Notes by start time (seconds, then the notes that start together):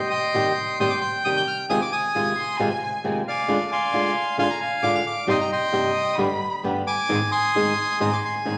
Already playing: D#5
0.10 G5 C6 D#6
0.34 C3 D#3 G3 C4 G4
0.80 C3 D#3 G3 C4 G4 G5 C6 D#6
0.90 D6
1.01 C6
1.25 C3 D#3 G3 C4 G4 D#6
1.37 G6
1.48 F6
1.70 C3 D#3 G#3 C4 F4 G#5 D#6
1.82 D6
1.92 G#5 D#6
2.15 C3 D#3 G#3 C4 F4
2.37 C6
2.59 C3 D#3 G#3 C4 F4 G#5
3.04 C3 D#3 G#3 C4 F4
3.28 D5 F5 G#5
3.48 D3 G#3 D4 F4
3.72 F5 G#5 C6
3.93 D3 G#3 D4 F4
4.38 D3 G#3 D4 F4 F5 G#5 C6
4.50 A#5
4.61 G#5
4.83 D3 G#3 D4 F4 D6
4.95 F6
5.07 D6
5.27 G2 C3 G3 C4 D#4 G4 D#5 G5 C6
5.41 A#5
5.52 D#5 G5 C6
5.72 G2 C3 G3 C4 D#4 G4
5.95 D#6
6.18 G2 D3 G3 B3 D4 G4 B5
6.63 G2 D3 G3 B3 D4 G4
6.87 G#5 D6
7.09 G#2 D#3 G#3 C4 D#4 G#4
7.31 G#5 C6 D#6
7.55 G#2 D#3 G#3 C4 D#4 G#4
8.00 G#2 D#3 G#3 C4 D#4 G#4 G#5 C6 D#6
8.13 D6
8.25 C6
8.45 G#2 D#3 G#3 C4 D#4 G#4